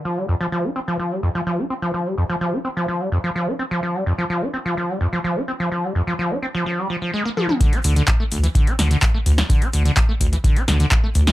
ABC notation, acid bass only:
X:1
M:4/4
L:1/16
Q:1/4=127
K:Dm
V:1 name="Acid bass" clef=bass
F, G, F,, F, F, _E C F, F, G, F,, F, F, E C F, | F, G, F,, F, F, _E C F, F, G, F,, F, F, E C F, | F, G, F,, F, F, _E C F, F, G, F,, F, F, E C F, | F, G, F,, F, F, _E C F, F, G, F, F, _A, B, F, F, |
D, D D, D, z A, D,, E, D, D D, D, z A, D,, E, | D, D D, D, z A, D,, E, D, D D, D, z A, D,, E, |]